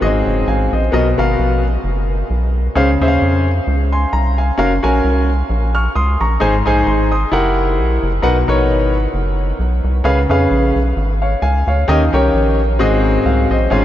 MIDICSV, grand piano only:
0, 0, Header, 1, 2, 480
1, 0, Start_track
1, 0, Key_signature, -5, "major"
1, 0, Tempo, 456274
1, 975, Time_signature, 4, 2, 24, 8
1, 14569, End_track
2, 0, Start_track
2, 0, Title_t, "Grand piano"
2, 0, Program_c, 0, 0
2, 9, Note_on_c, 0, 59, 63
2, 16, Note_on_c, 0, 66, 72
2, 19, Note_on_c, 0, 44, 60
2, 22, Note_on_c, 0, 68, 72
2, 24, Note_on_c, 0, 75, 89
2, 68, Note_on_c, 0, 60, 80
2, 75, Note_off_c, 0, 59, 0
2, 499, Note_off_c, 0, 75, 0
2, 503, Note_on_c, 0, 80, 63
2, 511, Note_on_c, 0, 77, 52
2, 720, Note_off_c, 0, 44, 0
2, 750, Note_off_c, 0, 80, 0
2, 755, Note_off_c, 0, 77, 0
2, 767, Note_on_c, 0, 75, 60
2, 774, Note_on_c, 0, 72, 47
2, 804, Note_off_c, 0, 66, 0
2, 807, Note_off_c, 0, 68, 0
2, 830, Note_off_c, 0, 60, 0
2, 968, Note_on_c, 0, 59, 87
2, 971, Note_off_c, 0, 75, 0
2, 977, Note_on_c, 0, 66, 71
2, 978, Note_on_c, 0, 47, 76
2, 979, Note_on_c, 0, 70, 77
2, 986, Note_on_c, 0, 75, 91
2, 1105, Note_off_c, 0, 59, 0
2, 1110, Note_off_c, 0, 66, 0
2, 1111, Note_off_c, 0, 70, 0
2, 1114, Note_off_c, 0, 75, 0
2, 1224, Note_off_c, 0, 72, 0
2, 1238, Note_on_c, 0, 59, 81
2, 1244, Note_on_c, 0, 66, 68
2, 1249, Note_on_c, 0, 70, 71
2, 1253, Note_on_c, 0, 77, 90
2, 1680, Note_off_c, 0, 47, 0
2, 1724, Note_off_c, 0, 59, 0
2, 1727, Note_off_c, 0, 66, 0
2, 1729, Note_off_c, 0, 70, 0
2, 1731, Note_off_c, 0, 77, 0
2, 2897, Note_on_c, 0, 61, 83
2, 2898, Note_on_c, 0, 68, 73
2, 2903, Note_on_c, 0, 49, 71
2, 2906, Note_on_c, 0, 72, 77
2, 2910, Note_on_c, 0, 77, 97
2, 3031, Note_off_c, 0, 61, 0
2, 3031, Note_off_c, 0, 68, 0
2, 3035, Note_off_c, 0, 72, 0
2, 3037, Note_off_c, 0, 77, 0
2, 3171, Note_on_c, 0, 61, 80
2, 3173, Note_on_c, 0, 68, 68
2, 3175, Note_on_c, 0, 72, 77
2, 3182, Note_on_c, 0, 76, 72
2, 3224, Note_off_c, 0, 76, 0
2, 3240, Note_on_c, 0, 77, 87
2, 3603, Note_off_c, 0, 49, 0
2, 3650, Note_off_c, 0, 61, 0
2, 3651, Note_off_c, 0, 68, 0
2, 3652, Note_off_c, 0, 72, 0
2, 3685, Note_off_c, 0, 77, 0
2, 4129, Note_on_c, 0, 84, 67
2, 4136, Note_on_c, 0, 80, 55
2, 4330, Note_off_c, 0, 84, 0
2, 4333, Note_off_c, 0, 80, 0
2, 4343, Note_on_c, 0, 82, 70
2, 4592, Note_off_c, 0, 82, 0
2, 4609, Note_on_c, 0, 80, 64
2, 4615, Note_on_c, 0, 77, 55
2, 4811, Note_off_c, 0, 77, 0
2, 4813, Note_on_c, 0, 61, 79
2, 4822, Note_on_c, 0, 66, 77
2, 4826, Note_on_c, 0, 70, 78
2, 4827, Note_on_c, 0, 77, 97
2, 4948, Note_off_c, 0, 61, 0
2, 4953, Note_off_c, 0, 66, 0
2, 4955, Note_off_c, 0, 70, 0
2, 4955, Note_off_c, 0, 77, 0
2, 5061, Note_off_c, 0, 80, 0
2, 5078, Note_on_c, 0, 61, 81
2, 5081, Note_on_c, 0, 66, 74
2, 5087, Note_on_c, 0, 70, 76
2, 5089, Note_on_c, 0, 80, 90
2, 5563, Note_off_c, 0, 61, 0
2, 5565, Note_off_c, 0, 66, 0
2, 5568, Note_off_c, 0, 70, 0
2, 5569, Note_off_c, 0, 80, 0
2, 6045, Note_on_c, 0, 89, 67
2, 6052, Note_on_c, 0, 85, 54
2, 6247, Note_off_c, 0, 89, 0
2, 6251, Note_off_c, 0, 85, 0
2, 6265, Note_on_c, 0, 87, 68
2, 6271, Note_on_c, 0, 84, 64
2, 6512, Note_off_c, 0, 87, 0
2, 6515, Note_off_c, 0, 84, 0
2, 6528, Note_on_c, 0, 85, 65
2, 6531, Note_on_c, 0, 82, 57
2, 6733, Note_on_c, 0, 63, 88
2, 6735, Note_on_c, 0, 68, 78
2, 6738, Note_on_c, 0, 44, 71
2, 6743, Note_on_c, 0, 72, 80
2, 6748, Note_on_c, 0, 80, 93
2, 6868, Note_off_c, 0, 63, 0
2, 6869, Note_off_c, 0, 68, 0
2, 6873, Note_off_c, 0, 72, 0
2, 6875, Note_off_c, 0, 80, 0
2, 6980, Note_off_c, 0, 85, 0
2, 6981, Note_off_c, 0, 82, 0
2, 7002, Note_on_c, 0, 63, 83
2, 7008, Note_on_c, 0, 68, 74
2, 7012, Note_on_c, 0, 72, 72
2, 7016, Note_on_c, 0, 80, 85
2, 7217, Note_off_c, 0, 80, 0
2, 7226, Note_on_c, 0, 84, 64
2, 7233, Note_on_c, 0, 80, 53
2, 7439, Note_off_c, 0, 44, 0
2, 7472, Note_off_c, 0, 84, 0
2, 7476, Note_off_c, 0, 80, 0
2, 7485, Note_off_c, 0, 63, 0
2, 7486, Note_on_c, 0, 87, 64
2, 7488, Note_off_c, 0, 68, 0
2, 7490, Note_off_c, 0, 72, 0
2, 7493, Note_on_c, 0, 84, 60
2, 7696, Note_on_c, 0, 64, 87
2, 7703, Note_on_c, 0, 67, 72
2, 7707, Note_on_c, 0, 70, 83
2, 7711, Note_on_c, 0, 78, 93
2, 7939, Note_off_c, 0, 87, 0
2, 7942, Note_off_c, 0, 84, 0
2, 8483, Note_off_c, 0, 64, 0
2, 8486, Note_off_c, 0, 67, 0
2, 8488, Note_off_c, 0, 70, 0
2, 8490, Note_off_c, 0, 78, 0
2, 8651, Note_on_c, 0, 63, 81
2, 8654, Note_on_c, 0, 70, 77
2, 8659, Note_on_c, 0, 71, 77
2, 8660, Note_on_c, 0, 47, 75
2, 8662, Note_on_c, 0, 78, 92
2, 8786, Note_off_c, 0, 63, 0
2, 8788, Note_off_c, 0, 70, 0
2, 8790, Note_off_c, 0, 71, 0
2, 8792, Note_off_c, 0, 78, 0
2, 8921, Note_on_c, 0, 63, 77
2, 8921, Note_on_c, 0, 70, 71
2, 8928, Note_on_c, 0, 71, 73
2, 8934, Note_on_c, 0, 73, 89
2, 9359, Note_off_c, 0, 47, 0
2, 9404, Note_off_c, 0, 63, 0
2, 9404, Note_off_c, 0, 70, 0
2, 9407, Note_off_c, 0, 71, 0
2, 9410, Note_off_c, 0, 73, 0
2, 10563, Note_on_c, 0, 61, 86
2, 10569, Note_on_c, 0, 49, 72
2, 10570, Note_on_c, 0, 68, 77
2, 10572, Note_on_c, 0, 71, 81
2, 10574, Note_on_c, 0, 77, 94
2, 10702, Note_off_c, 0, 61, 0
2, 10706, Note_off_c, 0, 68, 0
2, 10706, Note_off_c, 0, 71, 0
2, 10707, Note_off_c, 0, 77, 0
2, 10829, Note_on_c, 0, 61, 76
2, 10835, Note_on_c, 0, 68, 72
2, 10842, Note_on_c, 0, 71, 74
2, 10844, Note_on_c, 0, 77, 90
2, 11274, Note_off_c, 0, 49, 0
2, 11318, Note_off_c, 0, 61, 0
2, 11321, Note_off_c, 0, 68, 0
2, 11324, Note_off_c, 0, 71, 0
2, 11326, Note_off_c, 0, 77, 0
2, 11802, Note_on_c, 0, 77, 66
2, 11807, Note_on_c, 0, 73, 54
2, 12005, Note_off_c, 0, 77, 0
2, 12008, Note_off_c, 0, 73, 0
2, 12017, Note_on_c, 0, 80, 78
2, 12027, Note_on_c, 0, 77, 60
2, 12267, Note_off_c, 0, 80, 0
2, 12270, Note_off_c, 0, 77, 0
2, 12286, Note_on_c, 0, 77, 65
2, 12293, Note_on_c, 0, 73, 54
2, 12495, Note_on_c, 0, 61, 93
2, 12498, Note_on_c, 0, 67, 78
2, 12499, Note_on_c, 0, 51, 76
2, 12502, Note_on_c, 0, 70, 79
2, 12509, Note_on_c, 0, 75, 95
2, 12629, Note_off_c, 0, 61, 0
2, 12630, Note_off_c, 0, 67, 0
2, 12632, Note_off_c, 0, 70, 0
2, 12635, Note_off_c, 0, 75, 0
2, 12739, Note_off_c, 0, 77, 0
2, 12743, Note_off_c, 0, 73, 0
2, 12757, Note_on_c, 0, 61, 77
2, 12764, Note_on_c, 0, 67, 75
2, 12769, Note_on_c, 0, 70, 77
2, 12774, Note_on_c, 0, 73, 85
2, 13201, Note_off_c, 0, 51, 0
2, 13243, Note_off_c, 0, 61, 0
2, 13246, Note_off_c, 0, 67, 0
2, 13249, Note_off_c, 0, 70, 0
2, 13251, Note_off_c, 0, 73, 0
2, 13457, Note_on_c, 0, 60, 89
2, 13460, Note_on_c, 0, 66, 85
2, 13464, Note_on_c, 0, 44, 71
2, 13467, Note_on_c, 0, 68, 83
2, 13472, Note_on_c, 0, 75, 93
2, 13945, Note_off_c, 0, 75, 0
2, 13949, Note_on_c, 0, 77, 68
2, 14164, Note_off_c, 0, 44, 0
2, 14195, Note_off_c, 0, 77, 0
2, 14211, Note_on_c, 0, 75, 67
2, 14217, Note_on_c, 0, 72, 58
2, 14245, Note_off_c, 0, 60, 0
2, 14247, Note_off_c, 0, 66, 0
2, 14250, Note_off_c, 0, 68, 0
2, 14414, Note_on_c, 0, 61, 83
2, 14422, Note_on_c, 0, 65, 81
2, 14425, Note_on_c, 0, 44, 76
2, 14426, Note_on_c, 0, 68, 79
2, 14431, Note_on_c, 0, 77, 89
2, 14550, Note_off_c, 0, 61, 0
2, 14554, Note_off_c, 0, 65, 0
2, 14556, Note_off_c, 0, 68, 0
2, 14558, Note_off_c, 0, 77, 0
2, 14569, Note_off_c, 0, 44, 0
2, 14569, Note_off_c, 0, 72, 0
2, 14569, Note_off_c, 0, 75, 0
2, 14569, End_track
0, 0, End_of_file